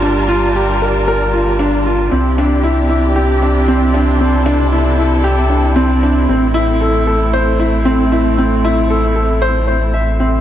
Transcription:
Already playing: G1 G3 D4 F4 G4 A#4 A5
0.02 D4
0.29 F4
0.56 G4
0.82 A#4
1.08 A#4
1.34 F4
1.59 D4
1.86 F4
2.12 C2 C3 C4 D4 E4 G4
2.38 D4
2.63 E4
2.89 E4
3.16 G4
3.42 D4
3.68 C4
3.94 D4
4.19 C4 A4
4.46 D4
4.72 E4
4.98 E4
5.24 G4
5.49 D4
5.76 C4
6.03 D4
6.29 A1 A3 C4
6.54 E4
6.81 A4
7.07 A4
7.33 C5
7.60 E4
7.85 C4
8.12 E4
8.38 C4
8.65 E4
8.90 A4
9.16 A4
9.42 C5
9.68 C5
9.94 E5
10.20 C4

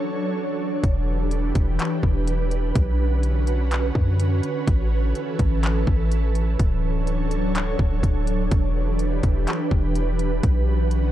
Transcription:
Already playing: F#3 D4 A4 C#5
0.83 E1 E3 G4 B4, kick, closed hi-hat
1.31 closed hi-hat
1.55 E1, kick, closed hi-hat
1.79 clap, closed hi-hat
2.03 E1, kick
2.28 closed hi-hat
2.51 closed hi-hat
2.75 B1 D3 C#4 F#4, kick, closed hi-hat
3.23 closed hi-hat
3.47 closed hi-hat
3.71 clap, closed hi-hat
3.95 F#2, kick
4.20 closed hi-hat
4.43 closed hi-hat
4.67 A1 E3 A4, kick, closed hi-hat
5.15 closed hi-hat
5.39 A1, kick, closed hi-hat
5.63 clap, closed hi-hat
5.87 A1, kick
6.12 closed hi-hat
6.35 closed hi-hat
6.59 D1 F#3 D4 A4 C#5, kick, closed hi-hat
7.07 closed hi-hat
7.31 closed hi-hat
7.55 clap, closed hi-hat
7.79 D1, kick
8.03 D1, kick, closed hi-hat
8.27 closed hi-hat
8.51 E1 E3 G4 B4, kick, closed hi-hat
8.99 closed hi-hat
9.23 E1, kick, closed hi-hat
9.47 clap, closed hi-hat
9.71 E1, kick
9.95 closed hi-hat
10.19 closed hi-hat
10.43 B1 D3 C#4 F#4, kick, closed hi-hat
10.91 closed hi-hat

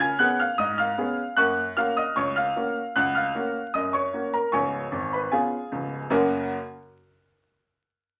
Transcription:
Already playing: C#3
0.00 G#5 G#6
0.19 B3 C#4 G#4 F#5 F#6
0.39 F5 F6
0.58 G#2 D#5 D#6
0.78 F5 F6
0.98 B3 C#4 G#4
1.37 F#2 A#3 F#5 C#6 F#6
1.77 A#3 C#4 F#4 F5 F6
1.97 D#5 D#6
2.16 C#2 C#5 C#6
2.36 F5 F6
2.56 A#3 C#4 F#4
2.96 C#2 F#5 F#6
3.15 F5 F6
3.35 A#3 C#4 F#4
3.74 F#2 D#5 D#6
3.93 C#5 C#6
4.13 A#3 C#4 F#4
4.34 A#4 A#5
4.52 C#1 C#2 C#5 G#5 C#6
4.92 G#1
5.13 B4 B5
5.32 B3 C#4 F4 G#4 F5 G#5
5.72 C#1 C#2
6.10 F#2 C#3 A#3 C#4 F#4 A#4 F#5

